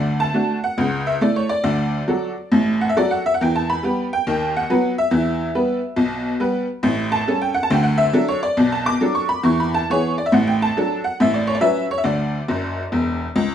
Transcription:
Already playing: D2 D3 D5
0.20 A5
0.34 A3 D4 F#4
0.64 F#5
0.78 C#2 C#3
1.07 E5
1.21 A3 E4 A4 D5
1.36 C#5
1.49 D5
1.64 D2 D3
2.08 F#3 F#4 A4
2.52 A1 A2
2.81 F#5
2.89 E5
2.97 F#3 F#4 A4 D5
3.11 F#5
3.26 E5
3.34 F#5
3.41 E2 E3 G5
3.55 A5
3.70 B5
3.83 G3 B3 G4
4.13 G5
4.27 D#2 D#3
4.57 F#5
4.70 F#3 B3 B4
4.98 E5
5.11 E2 E3
5.55 G3 B3 B4
5.96 B1 B2
6.40 G3 B3 B4
6.83 A1 A2
7.12 A5
7.27 G3 C#4 A4
7.42 G5
7.54 F#5
7.63 A5
7.70 D2 D3 G5
7.83 F#5
7.98 E5
8.13 F#3 D4 A4
8.28 C#5
8.43 D5
8.57 B1 B2
8.72 A5
8.86 D6
9.01 F#3 D4 A4
9.15 C#6
9.29 B5
9.43 E2 E3 C#6
9.60 B5
9.74 A5
9.90 E3 B3 G#4 C#5
10.18 D5
10.26 E5
10.32 A1 A2 F#5
10.47 G5
10.62 A5
10.77 F#3 D4 A4
11.04 F#5
11.20 A1 A2 E5
11.34 D5
11.47 C#5
11.55 D5
11.61 F#3 C#4 B4 E5
11.91 C#5
11.98 E5
12.04 D2 D3 D5
12.48 F#1 F#2
12.92 E1 E2
13.36 C#2

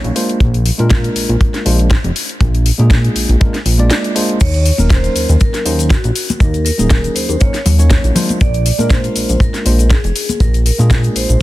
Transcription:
Already playing: F#3 A#3 C#4 D#4 C#5
0.04 A#1, closed hi-hat
0.15 G#3 A#3 D4 F4 C5, open hi-hat
0.29 closed hi-hat
0.40 A#1, kick, closed hi-hat
0.54 closed hi-hat
0.66 open hi-hat
0.78 A#2 G#3 A#3 D4 F4 A#4, closed hi-hat
0.90 kick, snare, closed hi-hat
1.04 closed hi-hat
1.16 A#1, open hi-hat
1.29 A#1, closed hi-hat
1.41 kick, closed hi-hat
1.54 snare, closed hi-hat
1.65 A#1 G#3 A#3 D4 F4 C5, open hi-hat
1.79 closed hi-hat
1.91 kick, snare, closed hi-hat
2.04 F1, closed hi-hat
2.16 open hi-hat
2.29 closed hi-hat
2.41 A#1, kick, closed hi-hat
2.55 closed hi-hat
2.66 open hi-hat
2.78 A#2 G#3 A#3 D4 F4 G#4, closed hi-hat
2.90 kick, snare, closed hi-hat
3.04 closed hi-hat
3.16 A#1, open hi-hat
3.29 A#1, closed hi-hat
3.40 G#3 A#3 D4 F4 A#4, kick, closed hi-hat
3.54 snare, closed hi-hat
3.66 A#1, open hi-hat
3.79 G#3 A#3 D4 F4 D5, closed hi-hat
3.90 snare, closed hi-hat
4.04 closed hi-hat
4.15 G#3 A#3 D4 F4 C5, open hi-hat
4.29 closed hi-hat
4.40 D#2 C#5, kick, closed hi-hat, crash, cabasa, shaker
4.54 closed hi-hat, shaker
4.66 open hi-hat, cabasa
4.78 D#1 F#3 A#3 C#4 D#4 A#4, closed hi-hat, high conga, cabasa, shaker
4.90 C5, kick, snare, closed hi-hat, cabasa, shaker
5.04 closed hi-hat, shaker
5.16 D#2, open hi-hat, cabasa
5.29 D#2, closed hi-hat, cabasa, shaker
5.40 A#4, kick, closed hi-hat, cabasa, shaker
5.54 snare, closed hi-hat, shaker
5.65 D#2 F#3 A#3 C#4 D#4 C5, open hi-hat, cabasa
5.79 closed hi-hat, cabasa, shaker
5.90 F#4, kick, snare, closed hi-hat, cabasa, shaker
6.04 A#1, closed hi-hat, shaker
6.16 open hi-hat, cabasa
6.29 closed hi-hat, high conga, cabasa, shaker
6.40 D#2 A#4, kick, closed hi-hat, cabasa, shaker
6.54 closed hi-hat, shaker
6.65 A#4, open hi-hat, cabasa
6.78 D#1 F#3 A#3 C#4 D#4 G#4, closed hi-hat, high conga, cabasa, shaker
6.90 kick, snare, closed hi-hat, cabasa, shaker
7.04 closed hi-hat, shaker
7.15 D#2 C5, open hi-hat, cabasa
7.29 D#2, closed hi-hat, cabasa, shaker
7.40 F#3 A#3 C#4 D#4 A#4 C#5, kick, closed hi-hat, cabasa, shaker
7.54 snare, closed hi-hat, shaker
7.66 D#2, open hi-hat, low conga, cabasa
7.79 F#3 A#3 C#4 D#4 C#5, closed hi-hat, cabasa, shaker
7.90 kick, snare, closed hi-hat, cabasa, shaker
8.04 A#1, closed hi-hat, shaker
8.15 G#3 A#3 D4 F4 C5, open hi-hat, low conga, cabasa
8.29 closed hi-hat, high conga, cabasa, shaker
8.41 A#1 D5, kick, closed hi-hat, cabasa, shaker
8.54 closed hi-hat, shaker
8.66 open hi-hat, cabasa
8.78 A#2 G#3 A#3 D4 F4 A#4, closed hi-hat, high conga, cabasa, shaker
8.90 C5, kick, snare, closed hi-hat, cabasa, shaker
9.04 closed hi-hat, shaker
9.16 A#1, open hi-hat, cabasa
9.29 A#1, closed hi-hat, cabasa, shaker
9.40 A#4, kick, closed hi-hat, cabasa, shaker
9.54 snare, closed hi-hat, shaker
9.65 A#1 G#3 A#3 D4 F4 C5, open hi-hat, cabasa
9.79 closed hi-hat, cabasa, shaker
9.90 G#4, kick, snare, closed hi-hat, cabasa, shaker
10.04 F1, closed hi-hat, shaker
10.16 open hi-hat, cabasa
10.29 closed hi-hat, high conga, cabasa, shaker
10.40 A#1 A#4, kick, closed hi-hat, cabasa, shaker
10.54 closed hi-hat, shaker
10.66 A#4, open hi-hat, cabasa
10.78 A#2 G#3 A#3 D4 F4 G#4, closed hi-hat, high conga, cabasa, shaker
10.91 kick, snare, closed hi-hat, cabasa, shaker
11.04 closed hi-hat, shaker
11.16 A#1 C5, open hi-hat, cabasa
11.29 A#1, closed hi-hat, cabasa, shaker

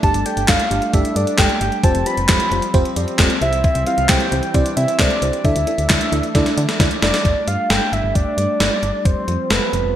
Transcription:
Already playing: D4
0.03 G1 G3 A3 D4 G4 A4 D5 A5, kick, closed hi-hat
0.14 G1, closed hi-hat
0.26 D4 G4 A4 D5 G5, closed hi-hat
0.37 G1, closed hi-hat
0.48 G1 D4 G4 A4 F5, kick, snare, clap, closed hi-hat
0.60 closed hi-hat
0.71 G1 D4 G4 A4 D5, closed hi-hat
0.82 closed hi-hat
0.93 G1 D4 G4 A4 D5 E5, kick, closed hi-hat
1.05 closed hi-hat
1.16 G2 D4 G4 A4 D5, closed hi-hat
1.27 closed hi-hat
1.38 G1 D4 G4 A4 D5 G5, kick, snare, clap, closed hi-hat
1.49 closed hi-hat
1.61 G1 D4 G4 A4 D5, closed hi-hat
1.72 closed hi-hat
1.84 F1 F3 C4 F4 G4 C5 A5, kick, closed hi-hat
1.95 F1, closed hi-hat
2.06 C4 F4 G4 C5 B5, closed hi-hat
2.17 F1, closed hi-hat
2.29 F1 C4 F4 G4 C5, kick, snare, clap, closed hi-hat
2.40 closed hi-hat
2.51 F1 C4 F4 G4 C5, closed hi-hat
2.62 closed hi-hat
2.74 F1 C4 F4 G4 C5, kick, closed hi-hat
2.85 closed hi-hat
2.96 F2 C4 F4 G4 D5, closed hi-hat
3.08 closed hi-hat
3.19 F1 C4 F4 G4 D5, kick, snare, clap, closed hi-hat
3.30 closed hi-hat
3.41 C2 E3 G3 C4 E4 G4 C5 E5, closed hi-hat
3.53 closed hi-hat
3.64 kick, closed hi-hat
3.75 C2, closed hi-hat
3.87 C4 E4 G4 C5 F5, closed hi-hat
3.98 C2, closed hi-hat
4.09 C2 C4 E4 G4 C5 G5, kick, snare, clap, closed hi-hat
4.20 closed hi-hat
4.32 C2 C4 E4 G4 C5, closed hi-hat
4.43 closed hi-hat
4.54 C2 C4 E4 G4 C5 D5, kick, closed hi-hat
4.66 closed hi-hat
4.77 C3 C4 E4 G4 C5 E5, closed hi-hat
4.88 closed hi-hat
4.99 C2 C4 E4 G4 C5 D5, kick, snare, clap, closed hi-hat
5.10 closed hi-hat
5.22 C2 C4 E4 G4 C5, closed hi-hat
5.33 closed hi-hat
5.44 D2 A3 D4 E4 A4 D5 E5, kick, closed hi-hat
5.56 D2, closed hi-hat
5.67 D4 E4 A4 D5, closed hi-hat
5.78 D2, closed hi-hat
5.89 D2 D4 E4 A4 D5, kick, snare, clap, closed hi-hat
6.01 closed hi-hat
6.12 D2 D4 E4 A4 D5, closed hi-hat
6.23 closed hi-hat
6.35 D2 D4 E4 A4 D5, kick, snare, closed hi-hat
6.46 snare, closed hi-hat
6.57 D3 D4 E4 A4 D5, closed hi-hat
6.69 snare, closed hi-hat
6.80 D2 D4 E4 A4 D5 E5, kick, snare, closed hi-hat
6.91 closed hi-hat
7.02 F1 D4 E4 A4 D5 A5, snare, closed hi-hat
7.14 snare, closed hi-hat
7.25 G1 G3 A3 D4 D5, kick, closed hi-hat
7.48 G2 F5, closed hi-hat
7.70 G1 G5, snare, closed hi-hat
7.92 G1 E5, closed hi-hat
8.04 G1
8.15 G1 D5, kick, closed hi-hat
8.38 G2, closed hi-hat
8.60 G1, snare, closed hi-hat
8.83 G1, closed hi-hat
9.05 F1 F3 C4 C5, kick, closed hi-hat
9.28 F2, closed hi-hat
9.50 F1 B4, snare, closed hi-hat
9.73 F1 B4, closed hi-hat
9.84 F1

